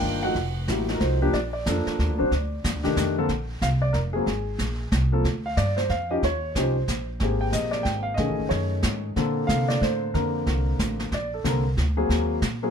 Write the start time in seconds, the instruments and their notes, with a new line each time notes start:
Already playing: grand piano D#3 A#3 D4 F4 G5
0.02 upright bass G1
0.23 grand piano F3 A3 D#4 F#4 F#5
0.35 upright bass F1, brush sweep, kick, snare
0.67 upright bass A1, grand piano F#3 A#3 E4 G4, kick, snare, hi-hat pedal
0.88 grand piano F3 A3 D#4 F#4, snare
0.95 grand piano A#4
1.00 upright bass C2, grand piano C5, kick, snare
1.22 grand piano F3 A#3 D4 G4
1.33 upright bass A#1, grand piano D5, brush sweep, kick, snare
1.53 grand piano D5
1.66 upright bass F2, grand piano F3 A#3 D4 A4, kick, snare, hi-hat pedal
1.86 muted upright bass stroke, snare
1.99 upright bass D#2, kick, snare
2.10 upright bass D2
2.18 upright bass A#1, grand piano F#3 C4 D4 C5
2.31 upright bass D2, brush sweep, kick, snare
2.64 upright bass F#2, kick, snare, hi-hat pedal
2.75 upright bass D2
2.83 upright bass C2, grand piano D#3 A3 D4 G4, snare
2.96 upright bass F2, kick, snare, hi-hat pedal
3.18 grand piano D3 A#3 C4 A4
3.29 upright bass A#1, brush sweep, kick, snare
3.62 upright bass C2, grand piano F5, kick, snare, hi-hat pedal
3.82 grand piano D5
3.93 upright bass F1, grand piano A#4, kick, snare
4.13 grand piano F#3 A#3 C4 G#4
4.26 upright bass G#1, brush sweep, kick, snare
4.58 upright bass A#1, kick, snare, hi-hat pedal
4.92 upright bass C2, kick, snare, hi-hat pedal
5.12 grand piano F3 A#3 C4 A4
5.24 upright bass D2, brush sweep, kick, snare
5.46 grand piano F5
5.57 upright bass G2, grand piano D5, kick, snare, hi-hat pedal
5.77 grand piano C5, snare
5.89 upright bass F2, grand piano F5, kick, snare
6.11 grand piano F3 C#4 D#4 G4 D#5
6.23 upright bass D#2, grand piano C#5, brush sweep, kick, snare
6.55 upright bass C2, grand piano F3 C#4 D#4 G4 C5, kick, snare, hi-hat pedal
6.88 upright bass A#1, kick, snare, hi-hat pedal
7.20 upright bass G#1, grand piano A#3 C4 G4 G#4, brush sweep, kick, snare
7.41 grand piano G5
7.52 upright bass A#1, grand piano D#5, kick, snare, hi-hat pedal
7.71 grand piano D5, snare
7.83 upright bass G#1, grand piano G5, kick, snare
8.03 grand piano F5
8.14 upright bass B1, grand piano D#5, brush sweep, kick, snare
8.18 grand piano D#3 A3 C#4 G#4
8.29 upright bass A1
8.39 upright bass F#1
8.49 upright bass F#2, grand piano C#5, kick, snare
8.83 upright bass G#2, kick, snare, hi-hat pedal
9.16 upright bass A#2, grand piano D3 A#3 C4 A4, brush sweep, kick, snare
9.47 upright bass C3, grand piano F5, kick, snare, hi-hat pedal
9.68 grand piano D5, snare
9.81 upright bass A2, grand piano C5, kick, snare
10.14 upright bass F2, grand piano D3 A#3 C4 A#4, brush sweep, kick, snare
10.46 upright bass C2, kick, snare
10.79 upright bass A1, kick, snare, hi-hat pedal
10.99 snare
11.11 upright bass A#1, grand piano D5, brush sweep, kick, snare
11.34 grand piano A4
11.44 upright bass C2, grand piano D3 A#3 C4 A4 A#4, kick, snare, hi-hat pedal
11.77 upright bass D2, kick, snare
11.97 grand piano F#3 A#3 C4 G#4
12.09 upright bass D#2, brush sweep, kick, snare
12.42 upright bass A#2, kick, snare, hi-hat pedal
12.63 grand piano F#3 A#3 C4 G#4